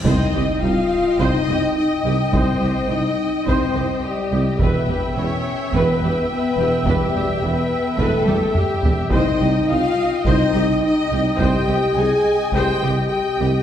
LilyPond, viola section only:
\new Staff \with { instrumentName = "Viola section" } { \time 4/4 \key c \phrygian \tempo 4 = 106 << { ees''1~ | ees''1 | e''1~ | e''1 |
ees''1~ | ees''1 | } \\ { c''8 g'8 ees'8 r8 c''8 g'8 r8 g'8 | c''8 g'8 ees'8 r8 c''8 g'8 r8 g'8 | b'8 g'8 e'8 r8 b'8 g'8 r8 g'8 | b'8 g'8 e'8 r8 b'8 g'8 r8 g'8 |
c''8 g'8 ees'8 r8 c''8 g'8 r8 g'8 | c''8 g'8 ees'8 r8 c''8 g'8 r8 g'8 | } >> }